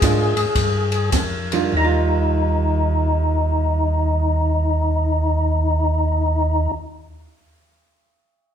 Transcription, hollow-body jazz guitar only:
0.03 0.33 G#3 medium
0.03 0.34 D4 medium
0.03 0.33 F4 medium
1.53 1.71 D#3 soft
1.53 1.73 G3 medium
1.53 1.73 D4 soft
1.53 1.73 F4 medium
1.72 6.70 D#3 medium
1.77 6.75 G3 medium
1.84 6.83 F4 medium

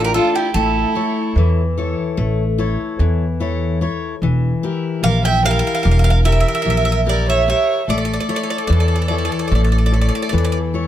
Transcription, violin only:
0.04 0.14 G4 medium
0.14 0.33 F4 medium
0.35 0.54 E4 medium
0.57 1.44 E4 medium
5.05 5.23 A#4 medium
5.25 5.43 E5 medium
5.45 6.22 A#4 medium
6.26 7.03 A#4 medium
7.08 7.27 A#4 medium
7.28 7.47 C#5 medium
7.48 7.86 C#5 medium
7.91 10.71 A4 medium

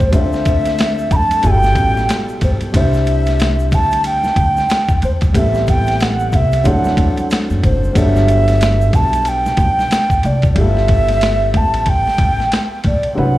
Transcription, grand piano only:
0.00 0.10 C4 soft
0.00 0.13 E4 soft
0.00 0.13 G4 soft
0.00 0.13 C5 medium
0.11 1.39 A3 medium
0.11 1.40 C4 medium
0.11 1.41 D4 medium
0.11 1.41 F4 medium
0.15 1.42 C5 medium
1.41 2.71 B2 medium
1.41 2.70 G3 medium
1.41 2.71 E4 medium
1.41 2.72 F4 medium
1.46 2.72 A4 medium
2.72 5.29 G3 medium
2.72 5.30 C4 soft
2.72 5.31 D4 medium
2.72 5.31 E4 medium
2.76 5.32 C5 medium
5.32 6.61 G3 medium
5.32 6.62 B3 medium
5.32 6.62 C4 medium
5.32 6.63 E4 soft
5.37 6.63 A4 medium
6.64 7.92 F#3 medium
6.64 7.92 C4 medium
6.64 7.93 D4 medium
6.64 7.93 E4 medium
6.64 7.94 A4 medium
7.93 10.52 F#3 medium
7.93 10.51 G3 medium
7.93 10.52 B3 medium
7.93 10.52 D4 medium
7.97 10.53 A4 medium
10.54 13.12 G3 medium
10.54 10.63 A3 soft
10.54 13.13 E4 medium
10.54 13.14 F4 medium
10.59 13.16 B3 medium
10.59 13.14 A4 medium
13.14 13.38 F#3 medium
13.14 13.38 C4 medium
13.14 13.38 D4 medium
13.14 13.38 E4 medium
13.18 13.38 B4 medium

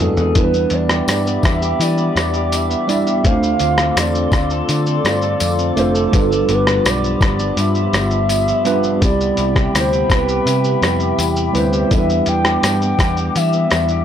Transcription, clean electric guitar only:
0.00 0.36 E3 medium
0.00 0.54 B3 medium
0.00 0.73 D4 medium
0.00 0.17 G#4 medium
0.18 0.43 G#4 medium
0.36 1.78 E3 medium
0.55 1.25 B3 medium
0.73 1.07 D4 medium
0.90 1.60 G4 medium
1.08 1.44 D4 medium
1.26 1.97 B3 medium
1.44 2.16 D4 medium
1.62 2.33 G4 medium
1.80 3.31 E3 medium
1.99 2.69 B3 medium
2.17 2.51 D4 medium
2.34 3.05 G4 medium
2.52 2.87 D4 medium
2.70 3.31 B3 medium
2.87 3.45 D4 medium
3.07 3.32 G4 medium
3.24 4.68 D3 medium
3.42 4.14 C4 medium
3.60 3.96 F4 medium
3.78 4.50 A4 medium
3.96 4.32 F4 medium
4.15 4.86 C4 medium
4.33 5.05 F4 medium
4.51 5.22 A4 medium
4.68 8.18 D3 medium
4.87 5.57 C4 medium
5.05 5.41 F4 medium
5.24 5.93 A4 medium
5.41 5.76 F4 medium
5.59 6.20 C4 medium
5.77 6.52 F4 medium
5.95 6.20 A4 medium
6.12 7.56 G2 medium
6.31 7.02 F3 medium
6.49 6.85 B3 medium
6.67 7.38 D4 medium
6.86 7.22 B3 medium
7.04 7.75 F3 medium
7.22 7.94 B3 medium
7.40 8.11 D4 medium
7.57 9.09 G2 medium
7.76 8.47 F3 medium
7.94 8.30 B3 medium
8.12 8.84 D4 medium
8.30 8.68 B3 medium
8.48 9.09 F3 medium
8.68 9.21 B3 medium
8.86 9.10 D4 medium
9.03 10.46 C3 medium
9.21 9.94 B3 medium
9.39 9.75 E4 medium
9.57 10.29 G4 medium
9.76 10.11 E4 medium
9.94 10.66 B3 medium
10.11 10.84 E4 medium
10.29 11.02 G4 medium
10.48 11.99 C3 medium
10.66 12.11 B3 medium
10.84 11.20 E4 medium
11.02 11.74 G4 medium
11.20 11.56 E4 medium
11.56 12.28 E4 medium
11.74 12.47 G4 medium
11.93 13.36 E3 medium
12.11 12.82 B3 medium
12.29 12.65 D4 medium
12.47 13.17 G4 medium
12.66 13.00 D4 medium
12.83 13.52 B3 medium
13.00 13.72 D4 medium
13.18 13.90 G4 medium
13.37 14.05 E3 medium
13.54 14.05 B3 medium
13.72 14.05 D4 medium
13.91 14.05 G4 medium

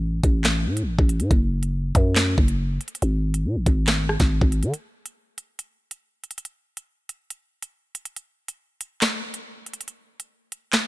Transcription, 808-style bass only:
0.00 0.21 A1 loud
0.24 0.68 A1 loud
0.66 0.84 A2 loud
0.83 0.98 A1 loud
0.99 1.22 A1 loud
1.20 1.30 A2 loud
1.31 1.92 F#1 loud
1.95 2.36 F#2 loud
2.38 2.79 F#1 loud
3.02 3.47 G#1 loud
3.45 3.57 B2 loud
3.56 3.66 G#1 loud
3.66 4.18 G#1 loud
4.20 4.41 G#1 loud
4.41 4.64 G#1 loud
4.63 4.73 D#3 loud

